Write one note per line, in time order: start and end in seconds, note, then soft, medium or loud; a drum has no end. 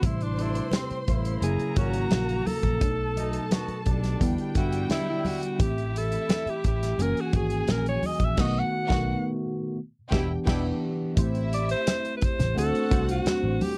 0.01 0.59 A1 loud
0.01 0.99 C3 medium
0.01 0.99 G3 medium
0.01 1.00 A3 medium
0.01 1.01 E4 medium
0.01 1.40 C5 medium
0.01 1.40 C6 medium
0.01 kick loud
0.01 closed hi-hat medium
0.01 muted conga soft
0.06 0.24 E4 medium
0.21 0.44 D4 medium
0.21 closed hi-hat soft
0.37 0.66 B2 medium
0.37 0.66 D3 medium
0.37 0.66 D4 medium
0.37 closed hi-hat medium
0.37 muted conga soft
0.42 0.75 E4 medium
0.55 closed hi-hat medium
0.71 1.01 A2 medium
0.71 1.01 G3 medium
0.71 1.01 C4 medium
0.71 snare loud
0.71 closed hi-hat loud
0.71 high conga medium
0.90 muted picked electric bass stroke soft
0.90 closed hi-hat soft
1.08 1.36 A1 medium
1.08 1.73 C#3 medium
1.08 1.73 A#3 medium
1.08 1.73 E4 medium
1.08 kick medium
1.08 closed hi-hat medium
1.25 closed hi-hat medium
1.41 1.56 F#1 loud
1.41 1.66 C#3 medium
1.41 1.66 F#3 medium
1.41 1.67 A#3 medium
1.41 2.79 A#3 medium
1.41 1.68 E4 medium
1.41 1.79 G#4 medium
1.41 2.79 A#5 medium
1.41 closed hi-hat medium
1.41 muted conga medium
1.59 muted picked electric bass stroke soft
1.59 closed hi-hat soft
1.76 2.05 G#1 medium
1.76 2.05 A#2 medium
1.76 2.49 C#3 medium
1.76 2.49 F#3 medium
1.76 2.05 F#3 medium
1.76 2.50 A#3 medium
1.76 2.05 C#4 medium
1.76 2.48 F#4 medium
1.76 2.51 F#4 medium
1.76 kick loud
1.76 closed hi-hat medium
1.76 muted conga soft
1.93 closed hi-hat medium
2.11 2.40 A#1 medium
2.11 snare loud
2.11 closed hi-hat medium
2.11 high conga medium
2.29 closed hi-hat soft
2.46 3.51 A4 loud
2.46 open hi-hat medium
2.46 high conga medium
2.63 2.78 A#1 loud
2.63 kick medium
2.63 closed hi-hat soft
2.80 3.37 B1 loud
2.80 3.77 B2 medium
2.80 3.78 F#3 medium
2.80 3.78 A3 medium
2.80 2.89 D4 medium
2.80 4.18 A4 medium
2.80 4.18 A5 medium
2.80 kick loud
2.80 closed hi-hat loud
2.80 muted conga medium
2.90 3.82 D#4 medium
3.16 3.44 B2 medium
3.16 3.44 A3 medium
3.16 3.44 D#4 medium
3.16 closed hi-hat medium
3.16 muted conga soft
3.33 closed hi-hat medium
3.51 3.79 D#3 medium
3.51 3.79 B3 medium
3.51 3.79 F#4 medium
3.51 snare loud
3.51 closed hi-hat loud
3.51 high conga medium
3.68 muted picked electric bass stroke soft
3.68 closed hi-hat soft
3.86 4.15 B1 medium
3.86 4.52 B2 medium
3.86 4.52 G3 medium
3.86 4.52 D4 medium
3.86 kick medium
3.86 closed hi-hat medium
4.04 snare soft
4.04 closed hi-hat medium
4.19 4.35 E2 loud
4.19 4.44 D3 medium
4.19 5.57 G3 medium
4.19 4.45 G3 medium
4.19 4.45 B3 medium
4.19 4.46 E4 medium
4.19 5.57 G5 medium
4.19 kick loud
4.19 closed hi-hat medium
4.19 muted conga medium
4.37 muted picked electric bass stroke soft
4.37 closed hi-hat soft
4.54 4.84 G2 medium
4.54 4.83 B2 medium
4.54 5.27 D3 medium
4.54 5.28 G3 medium
4.54 4.84 G3 medium
4.54 5.28 B3 medium
4.54 5.29 D4 medium
4.54 4.83 E4 medium
4.54 4.89 F#4 medium
4.54 kick medium
4.54 closed hi-hat medium
4.54 muted conga soft
4.72 closed hi-hat medium
4.90 5.40 B2 medium
4.90 5.40 G3 loud
4.90 5.40 E4 loud
4.90 5.07 E4 medium
4.90 snare loud
4.90 closed hi-hat medium
4.90 high conga medium
5.09 5.28 E4 medium
5.25 5.63 F#4 medium
5.25 open hi-hat medium
5.25 high conga medium
5.43 closed hi-hat medium
5.58 6.16 A1 loud
5.58 6.55 E3 medium
5.58 6.56 A3 medium
5.58 6.56 C4 medium
5.58 6.96 E4 medium
5.58 6.57 G4 medium
5.58 5.99 G4 medium
5.58 6.95 E5 medium
5.58 kick loud
5.58 closed hi-hat loud
5.58 muted conga soft
5.78 closed hi-hat soft
5.96 6.51 A4 loud
5.96 closed hi-hat medium
6.12 closed hi-hat medium
6.29 snare loud
6.29 closed hi-hat medium
6.29 high conga medium
6.46 6.66 G4 medium
6.46 muted picked electric bass stroke soft
6.46 closed hi-hat soft
6.64 6.93 A1 medium
6.64 7.03 G4 medium
6.64 kick medium
6.64 closed hi-hat medium
6.83 snare soft
6.83 closed hi-hat medium
6.98 7.13 F#1 loud
6.98 7.23 E3 medium
6.98 7.23 A#3 medium
6.98 7.24 C#4 medium
6.98 7.25 F#4 medium
6.98 8.35 G#4 medium
6.98 8.35 G#5 medium
6.98 closed hi-hat medium
6.98 muted conga medium
7.02 7.22 A#4 loud
7.17 7.38 F#4 medium
7.17 closed hi-hat soft
7.32 7.62 G#1 medium
7.32 8.05 E3 medium
7.32 8.06 A#3 medium
7.32 8.07 C#4 medium
7.32 8.07 F#4 medium
7.32 7.73 G#4 loud
7.32 kick loud
7.32 closed hi-hat medium
7.32 muted conga medium
7.50 closed hi-hat medium
7.68 7.97 A#1 loud
7.68 7.87 A#4 medium
7.68 snare loud
7.68 closed hi-hat medium
7.68 high conga medium
7.86 8.08 C#5 loud
7.86 closed hi-hat soft
8.03 8.26 D#5 loud
8.03 open hi-hat medium
8.03 high conga medium
8.20 8.34 A#1 medium
8.20 kick medium
8.20 closed hi-hat medium
8.25 8.43 E5 loud
8.36 8.62 B1 loud
8.36 8.61 D#3 medium
8.36 8.62 A3 loud
8.36 8.62 B3 loud
8.36 8.61 F#4 medium
8.36 8.63 F#4 loud
8.36 8.61 F#5 medium
8.36 kick loud
8.36 snare loud
8.36 crash medium
8.41 8.61 D#5 loud
8.59 9.27 F#5 loud
8.88 9.14 B1 loud
8.88 9.13 D#3 loud
8.88 9.13 A3 medium
8.88 9.14 B3 medium
8.88 9.13 F#4 loud
8.88 9.15 F#4 loud
8.88 9.13 F#5 loud
8.88 kick loud
8.88 snare loud
10.11 10.36 E1 loud
10.11 10.30 B2 medium
10.11 10.35 E3 loud
10.11 10.30 G3 medium
10.11 10.36 B3 loud
10.11 10.36 D4 loud
10.11 10.30 E4 medium
10.11 10.35 G4 medium
10.11 10.37 G4 loud
10.11 10.35 G5 medium
10.11 kick loud
10.11 snare loud
10.45 10.71 E1 loud
10.45 10.65 B2 medium
10.45 10.70 E3 loud
10.45 10.65 G3 loud
10.45 10.71 B3 loud
10.45 10.71 D4 loud
10.45 10.65 E4 medium
10.45 10.70 G4 medium
10.45 10.72 G4 loud
10.45 10.70 G5 loud
10.45 kick loud
10.45 snare loud
10.45 crash medium
11.15 11.73 A1 loud
11.15 12.12 A3 medium
11.15 12.13 C4 medium
11.15 12.19 E4 medium
11.15 12.14 E4 medium
11.15 12.14 G4 medium
11.15 12.14 C5 loud
11.15 12.18 E5 medium
11.15 kick loud
11.15 closed hi-hat loud
11.15 muted conga medium
11.35 closed hi-hat soft
11.53 11.69 D5 loud
11.53 closed hi-hat medium
11.69 12.12 C5 loud
11.69 closed hi-hat medium
11.87 snare loud
11.87 closed hi-hat loud
11.87 high conga medium
12.05 closed hi-hat soft
12.17 12.26 B4 medium
12.21 12.58 C5 loud
12.21 muted picked electric bass stroke soft
12.21 kick loud
12.21 closed hi-hat medium
12.39 12.53 A1 medium
12.39 snare soft
12.39 closed hi-hat medium
12.39 low conga medium
12.55 12.70 D2 medium
12.55 12.83 A3 medium
12.55 12.84 C4 medium
12.55 12.84 D4 medium
12.55 13.58 F#4 medium
12.55 12.85 F#4 medium
12.55 12.85 C5 medium
12.55 13.59 F#5 loud
12.55 closed hi-hat medium
12.55 muted conga medium
12.59 13.06 A4 loud
12.74 muted picked electric bass stroke soft
12.74 closed hi-hat soft
12.90 13.19 C2 loud
12.90 13.62 A3 medium
12.90 13.63 C4 medium
12.90 13.63 D4 medium
12.90 13.64 F#4 medium
12.90 13.64 C5 medium
12.90 kick medium
12.90 closed hi-hat medium
12.90 muted conga medium
13.09 13.64 F#4 medium
13.09 closed hi-hat medium
13.26 muted picked electric bass stroke soft
13.26 snare loud
13.26 closed hi-hat medium
13.26 high conga medium
13.44 13.57 A1 medium
13.61 13.78 G4 loud
13.61 open hi-hat medium
13.61 high conga medium